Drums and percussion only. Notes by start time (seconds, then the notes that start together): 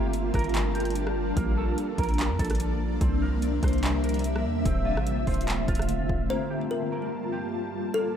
0.13 closed hi-hat
0.34 kick, cross-stick, closed hi-hat
0.39 closed hi-hat
0.44 closed hi-hat
0.49 closed hi-hat
0.54 clap, closed hi-hat
0.75 closed hi-hat
0.80 closed hi-hat
0.85 closed hi-hat
0.90 closed hi-hat
0.95 closed hi-hat
1.07 cross-stick
1.37 kick, closed hi-hat
1.78 closed hi-hat
1.98 kick, closed hi-hat
2.03 closed hi-hat
2.09 closed hi-hat
2.14 closed hi-hat
2.19 clap, closed hi-hat
2.39 kick, closed hi-hat
2.45 closed hi-hat
2.50 cross-stick, closed hi-hat
2.55 closed hi-hat
2.60 closed hi-hat
3.01 kick, closed hi-hat
3.42 closed hi-hat
3.63 kick, cross-stick, closed hi-hat
3.68 closed hi-hat
3.73 closed hi-hat
3.78 closed hi-hat
3.83 clap, closed hi-hat
4.04 closed hi-hat
4.09 closed hi-hat
4.14 closed hi-hat
4.19 closed hi-hat
4.24 closed hi-hat
4.36 cross-stick
4.65 kick, closed hi-hat
4.97 cross-stick
5.07 closed hi-hat
5.27 kick, closed hi-hat, open hi-hat
5.34 closed hi-hat
5.41 closed hi-hat
5.48 clap, closed hi-hat
5.68 kick, closed hi-hat
5.75 closed hi-hat
5.79 cross-stick, closed hi-hat
5.89 closed hi-hat
6.09 kick